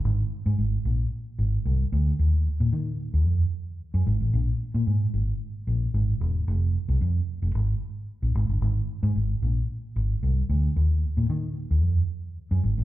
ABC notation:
X:1
M:4/4
L:1/16
Q:1/4=112
K:Fphr
V:1 name="Fingered electric bass" clef=bass
A,,,2 z A,, A,,,2 B,,,2 z2 A,,,2 C,,2 =D,,2 | E,,3 B,, E,2 z E,, F,,2 z3 G,, A,,, =A,,, | B,,,2 z B,, ^G,,2 ^G,,,2 z2 B,,,2 G,,,2 =E,,,2 | F,,,3 C,, F,,2 z F,,, A,,,2 z3 B,,, A,,, =G,,, |
A,,,2 z A,, A,,,2 B,,,2 z2 A,,,2 C,,2 =D,,2 | E,,3 B,, E,2 z E,, F,,2 z3 G,, A,,, =A,,, |]